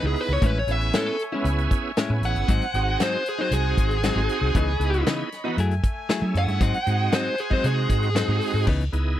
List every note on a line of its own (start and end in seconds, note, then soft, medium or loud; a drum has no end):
0.00 0.14 C#2 medium
0.00 0.42 B3 medium
0.00 0.42 D#4 medium
0.00 0.42 E4 medium
0.00 0.42 G#4 medium
0.00 0.38 C#5 medium
0.00 0.38 D#5 medium
0.00 0.37 B5 medium
0.07 0.21 G#4 medium
0.16 open hi-hat medium
0.21 0.33 B4 medium
0.29 0.40 C#2 medium
0.33 0.46 C#5 medium
0.42 0.64 A1 loud
0.42 0.58 A2 medium
0.42 0.58 G#3 medium
0.42 0.59 C#4 medium
0.42 0.59 E4 medium
0.42 2.47 C#5 medium
0.42 2.47 E5 medium
0.42 4.51 G#5 medium
0.42 kick loud
0.42 closed hi-hat medium
0.46 0.57 B4 medium
0.59 0.71 C#5 medium
0.67 0.89 A1 medium
0.67 1.17 B3 medium
0.67 1.17 C#4 medium
0.67 1.17 E4 medium
0.67 1.17 G#4 medium
0.67 closed hi-hat medium
0.71 0.95 E5 medium
0.81 closed hi-hat soft
0.93 1.09 A2 medium
0.93 1.10 G#3 medium
0.93 1.10 C#4 medium
0.93 1.10 E4 medium
0.93 1.21 A4 medium
0.93 snare loud
0.93 closed hi-hat medium
1.19 closed hi-hat medium
1.32 1.49 G#3 soft
1.32 1.92 B3 medium
1.32 1.92 C#4 medium
1.32 1.49 C#4 medium
1.32 1.48 E4 medium
1.32 1.92 E4 medium
1.32 1.92 G#4 medium
1.44 1.66 C#2 medium
1.44 closed hi-hat medium
1.58 closed hi-hat soft
1.71 kick medium
1.71 closed hi-hat medium
1.97 2.13 A2 medium
1.97 2.13 G#3 medium
1.97 2.14 C#4 medium
1.97 2.14 E4 medium
1.97 snare loud
1.97 closed hi-hat medium
2.10 2.20 A2 medium
2.10 2.49 B3 medium
2.10 2.48 C#4 medium
2.10 2.48 E4 medium
2.10 2.48 G#4 medium
2.22 2.33 A1 medium
2.22 2.99 F#5 loud
2.22 closed hi-hat medium
2.35 2.46 G1 medium
2.35 closed hi-hat soft
2.48 2.59 G#1 medium
2.48 2.64 G#2 medium
2.48 2.64 F#3 medium
2.48 2.65 C4 medium
2.48 2.65 D#4 medium
2.48 4.53 C5 medium
2.48 4.53 F#5 medium
2.48 kick loud
2.48 closed hi-hat medium
2.61 closed hi-hat soft
2.74 2.95 G#1 medium
2.74 3.24 C4 medium
2.74 3.24 D#4 medium
2.74 3.24 F#4 medium
2.74 3.24 G#4 medium
2.74 closed hi-hat medium
3.00 3.16 G#2 medium
3.00 3.16 F#3 medium
3.00 3.16 C4 medium
3.00 3.17 D#4 medium
3.00 3.26 C5 medium
3.00 snare loud
3.00 closed hi-hat medium
3.26 3.40 G#4 medium
3.26 closed hi-hat medium
3.39 3.56 F#3 soft
3.39 3.98 C4 medium
3.39 3.55 C4 soft
3.39 3.54 D#4 soft
3.39 3.98 D#4 medium
3.39 3.98 F#4 medium
3.39 3.98 G#4 medium
3.39 3.52 C5 medium
3.51 3.73 C2 medium
3.51 5.03 G#4 loud
3.51 closed hi-hat medium
3.77 4.10 G#1 medium
3.77 kick medium
3.77 closed hi-hat medium
3.91 closed hi-hat soft
4.03 4.19 G#2 medium
4.03 4.19 F#3 medium
4.03 4.20 C4 medium
4.03 4.20 D#4 medium
4.03 snare loud
4.03 closed hi-hat medium
4.15 4.26 G#1 medium
4.15 4.55 C4 medium
4.15 4.55 D#4 medium
4.15 4.55 F#4 medium
4.15 4.55 G#4 medium
4.29 closed hi-hat medium
4.41 4.52 C2 loud
4.55 4.76 C#2 loud
4.55 4.71 C#3 medium
4.55 4.71 E3 medium
4.55 4.71 B3 medium
4.55 4.72 D#4 medium
4.55 5.58 C#5 medium
4.55 5.57 D#5 medium
4.55 5.58 B5 medium
4.55 kick loud
4.55 closed hi-hat medium
4.80 5.01 C#2 loud
4.80 5.29 B3 medium
4.80 5.29 D#4 medium
4.80 5.30 E4 medium
4.80 5.30 G#4 medium
4.80 closed hi-hat medium
4.94 closed hi-hat soft
5.06 5.22 C#3 medium
5.06 5.22 E3 medium
5.06 5.23 B3 medium
5.06 5.23 D#4 loud
5.06 snare loud
5.06 closed hi-hat medium
5.32 snare soft
5.32 closed hi-hat medium
5.44 5.57 B3 medium
5.44 5.58 B3 medium
5.44 5.57 D#4 medium
5.44 5.58 D#4 medium
5.44 5.57 E4 medium
5.44 5.57 F#4 medium
5.48 5.58 E3 soft
5.57 5.79 F#2 medium
5.57 5.73 F#3 medium
5.57 5.74 A3 medium
5.57 6.61 A3 medium
5.57 5.74 E4 medium
5.57 5.75 G#4 medium
5.57 6.61 E5 medium
5.57 6.60 G#5 medium
5.57 closed hi-hat medium
5.71 closed hi-hat soft
5.84 kick medium
5.84 closed hi-hat medium
6.09 6.25 F#3 medium
6.09 6.25 A3 medium
6.09 6.26 E4 medium
6.09 6.26 G#4 medium
6.09 snare loud
6.09 closed hi-hat medium
6.21 6.33 F#3 medium
6.21 6.60 A3 medium
6.21 6.61 C#4 medium
6.21 6.60 E4 medium
6.21 6.60 G#4 medium
6.34 6.46 F#2 medium
6.34 7.12 F#5 loud
6.34 closed hi-hat medium
6.47 6.58 G2 medium
6.47 closed hi-hat soft
6.61 6.76 G#2 medium
6.61 6.72 G#2 loud
6.61 6.77 F#3 medium
6.61 6.77 C4 medium
6.61 6.77 D#4 medium
6.61 8.65 C5 medium
6.61 8.65 F#5 medium
6.61 8.65 G#5 medium
6.61 kick loud
6.61 closed hi-hat medium
6.74 closed hi-hat soft
6.86 7.08 G#2 medium
6.86 7.36 G#3 medium
6.86 7.36 C4 medium
6.86 7.36 D#4 medium
6.86 7.36 F#4 medium
6.86 closed hi-hat medium
7.12 7.28 G#2 medium
7.12 7.28 F#3 medium
7.12 7.29 C4 medium
7.12 7.29 D#4 medium
7.12 7.39 C5 loud
7.12 snare loud
7.12 closed hi-hat medium
7.38 7.52 G#4 medium
7.38 closed hi-hat medium
7.50 7.68 F#3 soft
7.50 8.10 G#3 medium
7.50 8.10 C4 medium
7.50 7.67 C4 soft
7.50 7.66 D#4 medium
7.50 8.10 D#4 medium
7.50 8.10 F#4 medium
7.50 7.65 C5 medium
7.50 kick medium
7.64 7.85 C3 medium
7.64 8.65 G#4 loud
7.64 closed hi-hat medium
7.89 8.22 G#2 medium
7.89 kick medium
7.89 closed hi-hat medium
8.03 closed hi-hat soft
8.15 8.31 G#2 medium
8.15 8.31 F#3 medium
8.15 8.32 C4 medium
8.15 8.32 D#4 medium
8.15 snare loud
8.15 closed hi-hat medium
8.28 8.39 G#2 loud
8.28 8.67 G#3 medium
8.28 8.67 C4 medium
8.28 8.67 D#4 medium
8.28 8.67 F#4 medium
8.41 open hi-hat medium
8.54 8.65 G#2 loud
8.67 8.88 C#2 medium
8.67 8.83 C#3 medium
8.67 8.83 E3 medium
8.67 8.83 B3 medium
8.67 8.84 D#4 medium
8.67 kick loud
8.67 crash medium
8.80 closed hi-hat soft
8.92 9.14 C#2 medium
8.92 9.20 B3 medium
8.92 9.20 D#4 medium
8.92 9.20 E4 medium
8.92 9.20 G#4 medium
8.92 closed hi-hat medium